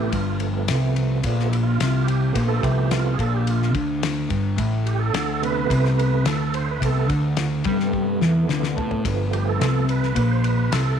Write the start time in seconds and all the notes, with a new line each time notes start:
Already playing: A1 A2 G4
0.10 G1 G2 F4, kick, ride
0.40 F3 A3 B3, ride
0.68 C2 C3, snare, ride
0.96 ride
1.23 A#1 A#2 F3 A3 B3, kick, ride
1.39 snare
1.49 E4, ride
1.63 F4
1.80 C2 C3, snare, ride
2.03 G4
2.08 ride
2.32 A#1 A#2 F3 A3 B3, kick, ride
2.49 A4
2.61 C2 C3 G4, kick, ride
2.91 F4, snare, ride
3.14 G#4
3.18 A#1 A#2 A4, kick, ride
3.34 G4
3.47 F4, ride
3.62 snare
3.73 D2 D3, kick, ride
4.03 snare, ride
4.29 G1 G2, kick, ride
4.56 A1 A2, kick, ride
4.86 G4, ride
4.99 A4
5.13 D2 D3, snare, ride
5.42 C3 A3 B3 B4, ride
5.70 C2 C3, kick, ride
5.84 C5, snare
5.98 B4, ride
6.25 D2 D3 A4, snare, ride
6.54 C5, ride
6.71 B4
6.80 C2 C3, kick, ride
6.85 C3 A3 B3 A4
7.08 D2 D3, kick, ride
7.37 snare, ride
7.64 G2 C3 G3, kick, ride
7.68 A3 B3
7.80 snare
7.93 kick
8.21 E2 E3, snare
8.48 D2 D3, snare
8.63 snare
8.76 A2 A3, floor tom
8.91 floor tom
9.04 G1 G2 F3 A3 B3, kick, ride
9.33 G4, ride
9.49 A4
9.59 C2 C3, snare, ride
9.89 B4, ride
10.03 snare
10.15 A#1 A#2, kick, ride
10.31 C5
10.44 B4, ride
10.71 C2 C3 A4, snare, ride